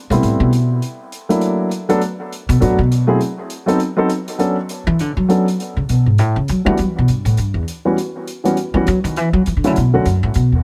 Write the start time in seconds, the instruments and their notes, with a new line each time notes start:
0.10 upright bass B2, grand piano G3 A3 B3 C4 E4, closed hi-hat
0.23 upright bass A2, closed hi-hat
0.40 upright bass B2
0.53 closed hi-hat
0.82 closed hi-hat
1.12 closed hi-hat
1.29 grand piano F#3 A3 A#3 D4 E4, closed hi-hat
1.41 closed hi-hat
1.71 closed hi-hat
1.89 grand piano F#3 A3 B3 D4 A4, closed hi-hat
2.01 closed hi-hat
2.33 closed hi-hat
2.49 upright bass B2, closed hi-hat
2.60 upright bass A2, grand piano F#3 A3 B3 D4 F#4, closed hi-hat
2.79 upright bass B2
2.92 closed hi-hat
3.07 grand piano F#3 A3 C4 E4 G#4
3.21 closed hi-hat
3.50 closed hi-hat
3.66 grand piano F#3 B3 C4 D#4 A4, closed hi-hat
3.80 closed hi-hat
3.97 grand piano F#3 B3 C4 D#4 A4
4.10 closed hi-hat
4.28 closed hi-hat
4.39 grand piano F#3 B3 C#4 D4 A4, closed hi-hat
4.69 closed hi-hat
4.87 upright bass E3
4.99 upright bass D3, closed hi-hat
5.17 upright bass F#3
5.28 grand piano F#3 B3 C#4 D4 A4, closed hi-hat
5.48 closed hi-hat
5.60 closed hi-hat
5.77 upright bass C#3
5.89 upright bass B2, closed hi-hat
6.06 upright bass G#2
6.18 upright bass A2, closed hi-hat
6.36 upright bass C#3
6.48 upright bass F#3, closed hi-hat
6.65 grand piano E3 G3 B3 D4 F#4, upright bass A3
6.78 upright bass G3, closed hi-hat
6.88 upright bass E3
6.98 upright bass B2
7.08 upright bass G2, closed hi-hat
7.25 upright bass A2, closed hi-hat
7.37 upright bass G2, closed hi-hat
7.54 upright bass E2
7.68 closed hi-hat
7.85 grand piano E3 G3 B3 C#4 F#4
7.98 closed hi-hat
8.28 closed hi-hat
8.44 grand piano E3 G3 B3 C#4 F#4, closed hi-hat
8.57 closed hi-hat
8.74 upright bass E3, grand piano E3 G3 B3 C#4 F#4
8.87 upright bass F#3, closed hi-hat
9.04 upright bass D#3, closed hi-hat
9.16 upright bass E3, closed hi-hat
9.33 upright bass F#3
9.46 upright bass E3, closed hi-hat
9.57 upright bass D3
9.64 upright bass C#3, grand piano D3 F#3 A3 C#4 E4, closed hi-hat
9.76 upright bass B2, closed hi-hat
9.94 upright bass D2, grand piano D3 F#3 A3 C#4 F#4
10.05 upright bass F#2, closed hi-hat
10.23 upright bass A2
10.34 upright bass B2, closed hi-hat
10.52 upright bass E2